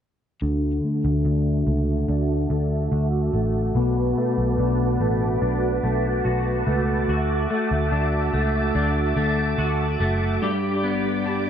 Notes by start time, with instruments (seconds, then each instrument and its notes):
0.42 picked electric bass D2, clean electric guitar D3 F#4, string machine F#4 E5 A5 D6
0.84 clean electric guitar A3
1.05 picked electric bass D2
1.25 picked electric bass D2, clean electric guitar D4
1.67 picked electric bass C#2, clean electric guitar A3
2.08 picked electric bass D2, clean electric guitar D4
2.50 picked electric bass D2, clean electric guitar A3
2.92 picked electric bass D2, clean electric guitar F#4
3.33 picked electric bass A1, clean electric guitar A3
3.75 picked electric bass B1, clean electric guitar B2 F#4, string machine B4
4.17 clean electric guitar A3
4.38 picked electric bass B1
4.59 picked electric bass B1, clean electric guitar D4
5.00 picked electric bass A1, clean electric guitar A3
5.42 picked electric bass B1, clean electric guitar D4
5.83 picked electric bass B1, clean electric guitar A3
6.25 picked electric bass B1, clean electric guitar F#4
6.67 picked electric bass C#2, clean electric guitar A3
7.08 picked electric bass D2, clean electric guitar F#4, string machine E5
7.50 clean electric guitar A3
7.71 picked electric bass D2
7.92 picked electric bass D2, clean electric guitar D4
8.33 picked electric bass C#2, clean electric guitar A3
8.75 picked electric bass D2, clean electric guitar D4
9.16 picked electric bass D2, clean electric guitar A3
9.58 picked electric bass D2, clean electric guitar F#4
10.00 picked electric bass F#1, clean electric guitar A3
10.41 clean electric guitar G2 G4, string machine G4 D5 B5
10.83 clean electric guitar B3
11.25 clean electric guitar D4